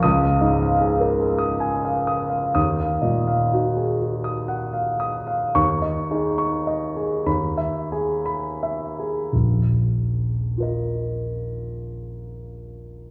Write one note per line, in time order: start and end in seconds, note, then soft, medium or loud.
0.03 2.51 C#2 medium
0.03 0.33 D#6 medium
0.23 0.53 F5 soft
0.41 1.03 G#2 soft
0.41 0.60 D#5 soft
0.62 0.92 F5 soft
0.81 1.46 D#4 soft
0.81 1.12 G#4 soft
1.00 1.20 A#4 soft
1.20 1.53 G#4 soft
1.38 1.74 D#6 soft
1.60 1.97 G#5 soft
1.85 2.21 F5 soft
2.07 2.45 D#6 soft
2.30 2.54 F5 soft
2.55 5.50 D#2 soft
2.55 2.94 D#6 medium
2.80 3.18 F5 soft
3.02 3.80 A#2 soft
3.02 3.27 D#5 soft
3.27 3.66 F5 soft
3.52 4.29 D#4 soft
3.52 3.90 F#4 soft
3.77 4.00 G#4 soft
3.99 4.38 F#4 soft
4.24 4.63 D#6 soft
4.48 4.89 F#5 soft
4.73 5.16 F5 soft
5.00 5.43 D#6 soft
5.27 5.54 F5 soft
5.55 7.21 D#2 soft
5.55 5.99 C#6 medium
5.82 6.27 D#5 soft
6.11 7.02 D#4 soft
6.11 6.55 G#4 soft
6.38 6.84 C#6 soft
6.67 7.13 D#5 soft
6.96 7.25 G#4 soft
7.26 9.28 D#2 soft
7.26 7.75 B5 soft
7.58 8.09 E5 soft
7.92 8.47 G#4 soft
8.26 8.85 B5 soft
8.63 9.19 E5 soft
8.99 9.32 G#4 soft
9.32 13.11 D#1 soft
9.32 13.11 A#1 soft
10.58 13.11 F4 soft
10.58 13.11 A#4 soft
10.62 13.11 D#5 soft